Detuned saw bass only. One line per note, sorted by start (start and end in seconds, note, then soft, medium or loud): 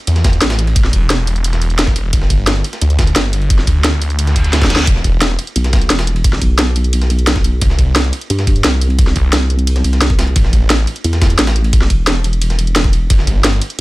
0.07 0.40 E2 medium
0.42 0.92 A1 medium
0.93 2.12 E1 loud
2.13 2.63 G1 medium
2.82 3.14 D2 medium
3.16 3.66 G1 medium
3.67 4.52 D2 loud
4.53 4.86 D2 medium
4.87 5.37 E1 loud
7.61 8.12 C2 loud
9.16 9.32 C2 medium
10.36 10.86 A1 loud
13.10 13.60 G1 medium